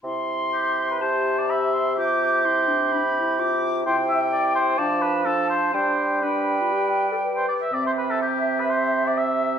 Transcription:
<<
  \new Staff \with { instrumentName = "Flute" } { \time 4/4 \key c \major \tempo 4 = 125 c'''2 a''4 b''8 c'''8 | d'''4 c'''4 b''4 d'''4 | g''2 a''4 a''4 | g''4 g''2~ g''8 r8 |
e''1 | }
  \new Staff \with { instrumentName = "Oboe" } { \time 4/4 \key c \major r4 g'8. b'16 c''8. d''16 e''4 | g'2.~ g'8 r8 | c''8 e''8 d''8 c''8 d''8 b'8 a'8 c''8 | c''4 b'2 r16 c''16 d''16 e''16 |
d''16 c''16 b'16 a'16 g'8. b'16 c''8. d''16 e''4 | }
  \new Staff \with { instrumentName = "Clarinet" } { \time 4/4 \key c \major e'2 g'2 | f'4 e'8 d'8 d'8 e'8 f'4 | e'2 d'4 d'4 | d'4 d'8. f'16 g'8. a'16 b'4 |
c'1 | }
  \new Staff \with { instrumentName = "Bassoon" } { \clef bass \time 4/4 \key c \major c1~ | c1 | c2 f2 | g2.~ g8 r8 |
c1 | }
>>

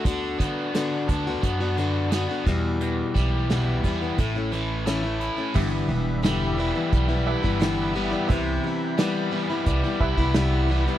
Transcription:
<<
  \new Staff \with { instrumentName = "Grand piano" } { \time 4/4 \key g \lydian \tempo 4 = 88 r1 | r1 | <g' b' e''>4~ <g' b' e''>16 r4 r16 <g' b' e''>4 r8 | <c' b' e''>4~ <c' b' e''>16 r4 r16 <g' b' e''>4 r8 | }
  \new Staff \with { instrumentName = "Tonewheel organ" } { \time 4/4 \key g \lydian << { r1 | r1 | b''1~ | b''1 | } \\ { r1 | r1 | <g' e''>1 | <e' b'>1 | } >> }
  \new Staff \with { instrumentName = "Steel-string acoustic guitar" } { \time 4/4 \key g \lydian <d b d' fis'>8 <d b d' fis'>8 <d b d' fis'>8 <d b d' fis'>16 <b d' fis'>8 <b d' fis'>16 <d b d' fis'>8 <d b d' fis'>16 <b d' fis'>16 <e, b, e g b e'>8~ | <e, b, e g b e'>8 <e g b e'>8 <e, b, e g b e'>8 <e g b e'>16 <e g b e'>16 <a, e a cis' e'>16 <a cis' e'>16 <e a cis' e'>8 <a, e a cis' e'>16 <a cis' e'>8 <a cis' e'>16 | <g, d e g b e'>8 <e g b e'>8 <g, d e g b e'>8 <e g b e'>16 <e g b e'>8 <e g b e'>8 <e g b e'>16 <g, d e g b e'>8 <e g b e'>16 <e g b e'>16 | <c e g b e'>8 <e g b e'>8 <c e g b e'>8 <e g b e'>16 <g b e'>8 <g b e'>8 <g b e'>16 <c e g b e'>8 <e g b e'>16 <g b e'>16 | }
  \new Staff \with { instrumentName = "Overdriven electric guitar" } { \clef bass \time 4/4 \key g \lydian d8 b8 d8 d'8 b8 d8 b8 e,8 | e,8 g8 e8 b8 a,8 e8 a8 e'8 | g,4 g8 e8 g8 e'8 b8 g8 | c4 g8 e8 g8 e'8 b8 g8 | }
  \new Staff \with { instrumentName = "Upright bass" } { \clef bass \time 4/4 \key g \lydian d,8 d4 d,8 fis,4. e,8~ | e,8 b,,4 e,8 a,,2 | g,,8 e,,4. b,,8. g,,4~ g,,16 | c,8 r4. c,16 r16 c,16 c,4~ c,16 | }
  \new DrumStaff \with { instrumentName = "Drums" } \drummode { \time 4/4 <hh bd>8 <hh bd sn>8 <hh sn>8 <hh bd>8 <hh bd>8 hh8 <hh sn>8 <hh bd>8 | hh8 <hh bd sn>8 <hh sn>8 <hh bd>8 <hh bd>8 hh8 <hh sn>8 hh8 | <cymc bd>4 <hh sn>4 <hh bd>8. bd16 <hh sn>4 | <hh bd>4 <hh sn>4 <hh bd>8 bd16 bd16 <hh sn>8. sn16 | }
>>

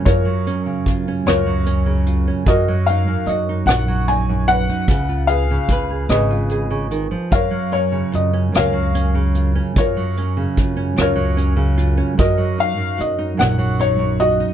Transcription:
<<
  \new Staff \with { instrumentName = "Felt piano" } { \time 6/8 \key fis \major \tempo 4. = 50 << { cis''4 r8 cis''4 r8 | dis''8 eis''8 dis''8 fis''8 gis''8 fis''8~ | fis''8 eis''4 dis''4 r8 | eis''8 cis''8 dis''8 eis''4. |
cis''4 r8 cis''4 r8 | dis''8 eis''8 dis''8 fis''8 cis''8 dis''8 | } \\ { <eis' ais'>4. <eis' ais'>4. | <fis' ais'>4. r4 b'8~ | b'8 <gis' b'>4 <gis' b'>4. | <ais' cis''>4. <ais' cis''>4. |
<eis' ais'>4. <eis' ais'>4. | <fis' ais'>4. r4 fis'8 | } >> }
  \new Staff \with { instrumentName = "Nylon-string guitar" } { \clef bass \time 6/8 \key fis \major << { r8 cis'8 eis'16 cis'8. cis'8 eis'16 cis'16 | r8 dis'8 fis'16 dis'8. dis'8 fis'16 dis'16 | r8 gis'8 b'16 gis'8. gis'4 | r8 cis'8 eis'16 cis'8. cis'8 eis'16 cis'16 |
r8 cis'8 eis'16 cis'8. cis'8 eis'16 cis'16 | r8 dis'8 fis'16 dis'8. dis'8 fis'16 dis'16 | } \\ { <fis, fis>16 fis8 cis8. fis,16 fis8 cis8. | fis,16 fis8 fis,8. fis,16 fis8 fis,8. | cis16 eis'8 cis8. cis16 eis'8 cis16 dis16 eis16 | fis,16 fis8 cis8. fis,16 fis8 cis8. |
fis,16 fis8 cis8. fis,16 fis8 cis8. | fis,16 fis8 fis,8. fis,16 fis8 fis,8. | } >> }
  \new Staff \with { instrumentName = "Upright bass" } { \clef bass \time 6/8 \key fis \major fis,4 fis,8 cis,4. | fis,4 fis,8 ais,,4. | cis,4 cis,8 gis,,4. | fis,4 fis,8 cis,4. |
fis,4 fis,8 cis,4. | fis,4 fis,8 ais,,4. | }
  \new DrumStaff \with { instrumentName = "Drums" } \drummode { \time 6/8 <hh bd>8 hh8 <hh bd>8 <hh ss>8 hh8 hh8 | <hh bd>8 hh8 hh8 <hh ss>8 hh8 hh8 | <hh bd>8 hh8 <hh bd>8 <hh ss>8 hh8 hh8 | <hh bd>8 hh8 hh8 <hh ss>8 hh8 hh8 |
<hh bd>8 hh8 <hh bd>8 <hh ss>8 hh8 hh8 | <hh bd>8 hh8 hh8 <hh ss>8 hh8 hh8 | }
>>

